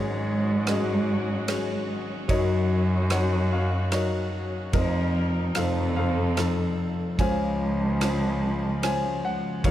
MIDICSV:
0, 0, Header, 1, 5, 480
1, 0, Start_track
1, 0, Tempo, 816327
1, 1348, Time_signature, 3, 2, 24, 8
1, 5709, End_track
2, 0, Start_track
2, 0, Title_t, "Grand piano"
2, 0, Program_c, 0, 0
2, 0, Note_on_c, 0, 32, 57
2, 0, Note_on_c, 0, 44, 56
2, 0, Note_on_c, 0, 54, 66
2, 0, Note_on_c, 0, 61, 62
2, 0, Note_on_c, 0, 66, 53
2, 0, Note_on_c, 0, 68, 76
2, 0, Note_on_c, 0, 73, 79
2, 8, Control_c, 0, 64, 127
2, 311, Note_off_c, 0, 54, 0
2, 312, Note_off_c, 0, 61, 0
2, 313, Note_off_c, 0, 68, 0
2, 395, Note_on_c, 0, 54, 59
2, 399, Note_off_c, 0, 66, 0
2, 400, Note_on_c, 0, 61, 55
2, 401, Note_on_c, 0, 68, 61
2, 405, Note_on_c, 0, 75, 68
2, 407, Note_on_c, 0, 66, 44
2, 409, Note_off_c, 0, 73, 0
2, 789, Note_off_c, 0, 54, 0
2, 791, Note_off_c, 0, 61, 0
2, 792, Note_off_c, 0, 68, 0
2, 852, Note_off_c, 0, 75, 0
2, 869, Note_on_c, 0, 54, 55
2, 872, Note_on_c, 0, 61, 49
2, 874, Note_on_c, 0, 68, 58
2, 1093, Note_off_c, 0, 66, 0
2, 1326, Note_off_c, 0, 32, 0
2, 1326, Note_off_c, 0, 44, 0
2, 1332, Note_off_c, 0, 54, 0
2, 1341, Note_on_c, 0, 54, 70
2, 1341, Note_on_c, 0, 63, 57
2, 1343, Note_on_c, 0, 30, 53
2, 1343, Note_on_c, 0, 42, 59
2, 1345, Note_on_c, 0, 73, 76
2, 1349, Note_off_c, 0, 61, 0
2, 1350, Note_off_c, 0, 68, 0
2, 1354, Note_on_c, 0, 75, 72
2, 1356, Control_c, 0, 64, 0
2, 1367, Note_on_c, 0, 70, 51
2, 1447, Control_c, 0, 64, 127
2, 1741, Note_off_c, 0, 54, 0
2, 1741, Note_off_c, 0, 63, 0
2, 1743, Note_off_c, 0, 73, 0
2, 1820, Note_on_c, 0, 54, 50
2, 1822, Note_on_c, 0, 63, 52
2, 1825, Note_on_c, 0, 73, 66
2, 1830, Note_on_c, 0, 78, 66
2, 1844, Note_off_c, 0, 75, 0
2, 2053, Note_off_c, 0, 70, 0
2, 2072, Note_on_c, 0, 77, 69
2, 2075, Note_off_c, 0, 78, 0
2, 2220, Note_off_c, 0, 54, 0
2, 2221, Note_off_c, 0, 63, 0
2, 2223, Note_off_c, 0, 73, 0
2, 2300, Note_on_c, 0, 54, 55
2, 2303, Note_on_c, 0, 63, 47
2, 2307, Note_on_c, 0, 73, 59
2, 2316, Note_off_c, 0, 77, 0
2, 2316, Note_on_c, 0, 75, 68
2, 2327, Note_on_c, 0, 70, 51
2, 2760, Note_off_c, 0, 30, 0
2, 2760, Note_off_c, 0, 42, 0
2, 2767, Note_off_c, 0, 75, 0
2, 2773, Note_off_c, 0, 70, 0
2, 2775, Note_off_c, 0, 63, 0
2, 2781, Note_on_c, 0, 53, 64
2, 2783, Note_off_c, 0, 54, 0
2, 2784, Note_on_c, 0, 41, 60
2, 2784, Note_on_c, 0, 63, 59
2, 2785, Note_on_c, 0, 29, 59
2, 2786, Note_off_c, 0, 73, 0
2, 2786, Note_on_c, 0, 70, 79
2, 2792, Note_on_c, 0, 75, 69
2, 2793, Control_c, 0, 64, 0
2, 2795, Note_off_c, 0, 70, 0
2, 2804, Note_on_c, 0, 70, 52
2, 2804, Note_on_c, 0, 72, 56
2, 2887, Control_c, 0, 64, 127
2, 3181, Note_off_c, 0, 53, 0
2, 3182, Note_off_c, 0, 63, 0
2, 3241, Note_off_c, 0, 41, 0
2, 3242, Note_off_c, 0, 29, 0
2, 3251, Note_off_c, 0, 70, 0
2, 3251, Note_off_c, 0, 72, 0
2, 3266, Note_on_c, 0, 53, 53
2, 3268, Note_on_c, 0, 41, 53
2, 3270, Note_on_c, 0, 29, 49
2, 3270, Note_on_c, 0, 63, 53
2, 3271, Note_on_c, 0, 77, 72
2, 3274, Control_c, 0, 64, 0
2, 3274, Note_on_c, 0, 69, 56
2, 3283, Note_off_c, 0, 75, 0
2, 3283, Note_on_c, 0, 72, 51
2, 3392, Control_c, 0, 64, 127
2, 3498, Note_off_c, 0, 77, 0
2, 3507, Note_on_c, 0, 77, 81
2, 3512, Note_off_c, 0, 69, 0
2, 3512, Note_off_c, 0, 72, 0
2, 3521, Note_on_c, 0, 69, 55
2, 3521, Note_on_c, 0, 72, 64
2, 3664, Note_off_c, 0, 53, 0
2, 3666, Note_off_c, 0, 63, 0
2, 3744, Note_off_c, 0, 69, 0
2, 3748, Note_on_c, 0, 53, 52
2, 3748, Note_on_c, 0, 63, 52
2, 3753, Note_on_c, 0, 69, 54
2, 4206, Note_off_c, 0, 41, 0
2, 4207, Note_off_c, 0, 29, 0
2, 4212, Note_off_c, 0, 72, 0
2, 4224, Note_off_c, 0, 53, 0
2, 4229, Note_off_c, 0, 63, 0
2, 4230, Note_on_c, 0, 80, 83
2, 4231, Note_off_c, 0, 69, 0
2, 4231, Note_off_c, 0, 77, 0
2, 4233, Note_on_c, 0, 53, 69
2, 4234, Note_on_c, 0, 61, 58
2, 4235, Control_c, 0, 64, 0
2, 4235, Note_on_c, 0, 37, 51
2, 4236, Note_on_c, 0, 49, 54
2, 4238, Note_on_c, 0, 72, 67
2, 4240, Note_on_c, 0, 77, 64
2, 4332, Control_c, 0, 64, 127
2, 4629, Note_off_c, 0, 53, 0
2, 4629, Note_off_c, 0, 61, 0
2, 4631, Note_off_c, 0, 72, 0
2, 4713, Note_on_c, 0, 53, 54
2, 4715, Note_on_c, 0, 61, 52
2, 4718, Note_on_c, 0, 72, 60
2, 5109, Note_off_c, 0, 53, 0
2, 5110, Note_off_c, 0, 61, 0
2, 5112, Note_off_c, 0, 72, 0
2, 5172, Note_off_c, 0, 77, 0
2, 5189, Note_off_c, 0, 80, 0
2, 5189, Note_on_c, 0, 53, 58
2, 5192, Note_on_c, 0, 61, 48
2, 5196, Note_on_c, 0, 72, 60
2, 5197, Note_on_c, 0, 80, 86
2, 5417, Note_off_c, 0, 80, 0
2, 5437, Note_on_c, 0, 78, 85
2, 5650, Note_off_c, 0, 37, 0
2, 5650, Note_off_c, 0, 49, 0
2, 5657, Note_off_c, 0, 78, 0
2, 5669, Note_on_c, 0, 54, 71
2, 5670, Note_off_c, 0, 53, 0
2, 5670, Note_on_c, 0, 39, 51
2, 5670, Note_on_c, 0, 63, 61
2, 5671, Note_off_c, 0, 61, 0
2, 5671, Note_on_c, 0, 51, 55
2, 5673, Note_off_c, 0, 72, 0
2, 5675, Note_on_c, 0, 73, 76
2, 5676, Note_on_c, 0, 77, 79
2, 5677, Control_c, 0, 64, 0
2, 5686, Note_on_c, 0, 70, 60
2, 5709, Note_off_c, 0, 39, 0
2, 5709, Note_off_c, 0, 51, 0
2, 5709, Note_off_c, 0, 54, 0
2, 5709, Note_off_c, 0, 63, 0
2, 5709, Note_off_c, 0, 70, 0
2, 5709, Note_off_c, 0, 73, 0
2, 5709, Note_off_c, 0, 77, 0
2, 5709, End_track
3, 0, Start_track
3, 0, Title_t, "String section"
3, 0, Program_c, 1, 48
3, 0, Note_on_c, 1, 56, 67
3, 0, Note_on_c, 1, 61, 58
3, 0, Note_on_c, 1, 66, 67
3, 1331, Note_off_c, 1, 56, 0
3, 1331, Note_off_c, 1, 66, 0
3, 1355, Note_on_c, 1, 54, 63
3, 1357, Note_on_c, 1, 66, 73
3, 2758, Note_off_c, 1, 61, 0
3, 2775, Note_off_c, 1, 54, 0
3, 2776, Note_off_c, 1, 66, 0
3, 2789, Note_on_c, 1, 63, 54
3, 2790, Note_on_c, 1, 53, 62
3, 2790, Note_on_c, 1, 70, 63
3, 3258, Note_on_c, 1, 69, 76
3, 3263, Note_off_c, 1, 70, 0
3, 4213, Note_off_c, 1, 53, 0
3, 4214, Note_off_c, 1, 69, 0
3, 4215, Note_off_c, 1, 63, 0
3, 4220, Note_on_c, 1, 53, 61
3, 4226, Note_on_c, 1, 49, 57
3, 5652, Note_off_c, 1, 53, 0
3, 5655, Note_off_c, 1, 49, 0
3, 5658, Note_on_c, 1, 61, 57
3, 5660, Note_on_c, 1, 51, 63
3, 5662, Note_on_c, 1, 66, 63
3, 5709, Note_off_c, 1, 51, 0
3, 5709, Note_off_c, 1, 61, 0
3, 5709, Note_off_c, 1, 66, 0
3, 5709, End_track
4, 0, Start_track
4, 0, Title_t, "Cello"
4, 0, Program_c, 2, 42
4, 0, Note_on_c, 2, 44, 96
4, 1168, Note_off_c, 2, 44, 0
4, 1346, Note_on_c, 2, 42, 109
4, 2604, Note_off_c, 2, 42, 0
4, 2782, Note_on_c, 2, 41, 91
4, 3203, Note_off_c, 2, 41, 0
4, 3265, Note_on_c, 2, 41, 95
4, 4106, Note_off_c, 2, 41, 0
4, 4228, Note_on_c, 2, 37, 87
4, 5488, Note_off_c, 2, 37, 0
4, 5671, Note_on_c, 2, 39, 96
4, 5709, Note_off_c, 2, 39, 0
4, 5709, End_track
5, 0, Start_track
5, 0, Title_t, "Drums"
5, 393, Note_on_c, 9, 51, 44
5, 396, Note_on_c, 9, 37, 64
5, 452, Note_off_c, 9, 51, 0
5, 455, Note_off_c, 9, 37, 0
5, 871, Note_on_c, 9, 51, 48
5, 873, Note_on_c, 9, 37, 63
5, 929, Note_off_c, 9, 51, 0
5, 932, Note_off_c, 9, 37, 0
5, 1347, Note_on_c, 9, 36, 69
5, 1347, Note_on_c, 9, 51, 46
5, 1405, Note_off_c, 9, 36, 0
5, 1406, Note_off_c, 9, 51, 0
5, 1823, Note_on_c, 9, 51, 46
5, 1826, Note_on_c, 9, 37, 64
5, 1882, Note_off_c, 9, 51, 0
5, 1885, Note_off_c, 9, 37, 0
5, 2303, Note_on_c, 9, 51, 46
5, 2306, Note_on_c, 9, 37, 57
5, 2362, Note_off_c, 9, 51, 0
5, 2365, Note_off_c, 9, 37, 0
5, 2783, Note_on_c, 9, 51, 43
5, 2784, Note_on_c, 9, 36, 75
5, 2842, Note_off_c, 9, 51, 0
5, 2843, Note_off_c, 9, 36, 0
5, 3262, Note_on_c, 9, 51, 45
5, 3265, Note_on_c, 9, 37, 67
5, 3321, Note_off_c, 9, 51, 0
5, 3324, Note_off_c, 9, 37, 0
5, 3746, Note_on_c, 9, 51, 42
5, 3749, Note_on_c, 9, 37, 62
5, 3805, Note_off_c, 9, 51, 0
5, 3808, Note_off_c, 9, 37, 0
5, 4226, Note_on_c, 9, 36, 73
5, 4228, Note_on_c, 9, 51, 40
5, 4285, Note_off_c, 9, 36, 0
5, 4287, Note_off_c, 9, 51, 0
5, 4710, Note_on_c, 9, 51, 47
5, 4713, Note_on_c, 9, 37, 64
5, 4769, Note_off_c, 9, 51, 0
5, 4772, Note_off_c, 9, 37, 0
5, 5192, Note_on_c, 9, 51, 47
5, 5195, Note_on_c, 9, 37, 58
5, 5251, Note_off_c, 9, 51, 0
5, 5254, Note_off_c, 9, 37, 0
5, 5670, Note_on_c, 9, 36, 71
5, 5671, Note_on_c, 9, 51, 47
5, 5709, Note_off_c, 9, 36, 0
5, 5709, Note_off_c, 9, 51, 0
5, 5709, End_track
0, 0, End_of_file